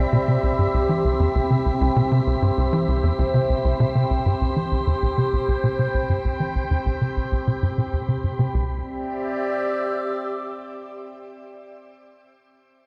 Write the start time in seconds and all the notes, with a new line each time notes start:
Already playing: C4 G4 D5 E5 B5
0.12 B2
0.28 C3
0.43 C2 C5
0.58 G2
0.74 C2
0.89 E3
1.04 C2
1.20 E2
1.35 C2
1.50 C3
1.66 C2
1.81 C2
1.96 B2
2.12 C3
2.27 C2
2.42 G2
2.57 C2
2.73 E3
2.88 C2
3.03 E2
3.19 C2
3.34 C3
3.49 C2
3.65 C2
3.80 B2
3.95 C3
4.10 C2
4.14 G5
4.26 G2
4.41 C2
4.56 E3
4.72 C2
4.87 E2
5.02 C2
5.18 C3
5.33 C2
5.48 C2
5.63 B2
5.79 C3
5.94 C2
6.09 G2
6.25 C2
6.40 E3
6.55 C2
6.71 E2
6.86 C2
7.01 C3
7.17 C2
7.32 C2
7.47 B2
7.62 G2
7.78 B2
7.93 E2
8.08 C3
8.24 G2
8.39 C3
8.54 C2 C4
8.63 G4
8.72 D5
8.82 E5